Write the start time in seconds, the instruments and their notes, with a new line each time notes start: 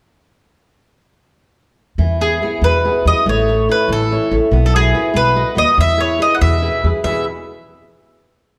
1.98 upright bass E2, nylon-string guitar E3
2.21 nylon-string guitar B3 E4 G#4, mandolin G#4
2.42 nylon-string guitar B3 E4 G#4
2.62 upright bass E2, nylon-string guitar B2, mandolin B4
2.85 nylon-string guitar B3 E4 G#4
3.05 upright bass E2, nylon-string guitar B3 E4 G#4, mandolin D#5
3.26 upright bass A1, nylon-string guitar A3, mandolin C#5
3.48 nylon-string guitar E4 A4 C#5
3.69 nylon-string guitar E4 A4 C#5, mandolin B4
3.88 upright bass A1, nylon-string guitar E3
3.93 mandolin A4
4.11 nylon-string guitar E4 A4 C#5
4.31 upright bass A1, nylon-string guitar E4 A4 C#5
4.51 upright bass B1, nylon-string guitar B3
4.66 mandolin A4
4.75 nylon-string guitar E4 F#4 B4, mandolin G#4
4.95 nylon-string guitar E4 F#4 B4
5.14 upright bass B1, nylon-string guitar B3, mandolin B4
5.36 nylon-string guitar F#4 B4 D#5
5.55 upright bass D#2, nylon-string guitar F#4 B4 D#5, mandolin D#5
5.77 upright bass E2, nylon-string guitar E3, mandolin E5
5.97 nylon-string guitar E4 G#4 B4, mandolin C#5
6.19 nylon-string guitar E4 G#4 B4, mandolin D#5
6.35 mandolin F#5
6.41 upright bass E2, nylon-string guitar B2, mandolin E5
6.62 nylon-string guitar E4 G#4 B4
6.84 upright bass E2, nylon-string guitar E4 G#4 B4
7.04 upright bass E2, nylon-string guitar E2 B2 E3 B3 G#4 B4, mandolin E5